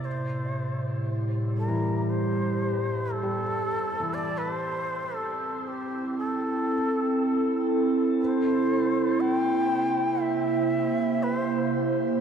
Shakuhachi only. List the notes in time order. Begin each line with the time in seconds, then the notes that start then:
0.05 C5
1.57 A#4
2.10 C5
3.12 A4
4.14 D5
4.38 B4
4.54 C5
5.16 A4
5.68 G4
6.18 A4
8.21 C5
9.20 G5
10.22 E5
11.23 B4
11.36 C5